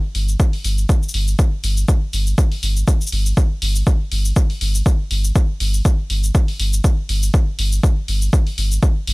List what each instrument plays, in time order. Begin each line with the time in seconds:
0.15 sub bass G1, open hi-hat
0.28 shaker
0.40 kick, shaker
0.53 open hi-hat
0.64 sub bass G1, open hi-hat, shaker
0.78 shaker
0.89 kick, shaker
1.03 shaker
1.08 shaker
1.14 sub bass G1, open hi-hat
1.28 shaker
1.39 kick, shaker
1.64 sub bass G1, open hi-hat, shaker
1.77 shaker
1.88 kick, shaker
2.13 sub bass G1, open hi-hat, shaker
2.27 shaker
2.38 kick, shaker
2.52 open hi-hat
2.63 sub bass G1, open hi-hat, shaker
2.76 shaker
2.88 kick, shaker
3.01 shaker
3.07 shaker
3.12 sub bass G1, open hi-hat
3.26 shaker
3.37 kick, shaker
3.62 sub bass G1, open hi-hat
3.76 shaker
3.87 kick, shaker
4.12 sub bass G1, open hi-hat
4.25 shaker
4.36 kick, shaker
4.50 open hi-hat
4.61 sub bass G1, open hi-hat
4.75 shaker
4.86 kick, shaker
5.11 sub bass G1, open hi-hat
5.24 shaker
5.36 kick, shaker
5.60 sub bass G1, open hi-hat
5.74 shaker
5.85 kick, shaker
6.10 sub bass G1, open hi-hat
6.23 shaker
6.35 kick, shaker
6.48 open hi-hat
6.60 sub bass G1, open hi-hat
6.73 shaker
6.84 kick, shaker
7.09 sub bass G1, open hi-hat
7.23 shaker
7.34 kick, shaker
7.59 sub bass G1, open hi-hat
7.72 shaker
7.83 kick, shaker
8.08 sub bass G1, open hi-hat
8.22 shaker
8.33 kick, shaker
8.47 open hi-hat
8.58 sub bass G1, open hi-hat
8.71 shaker
8.83 kick, shaker
9.07 sub bass G1, open hi-hat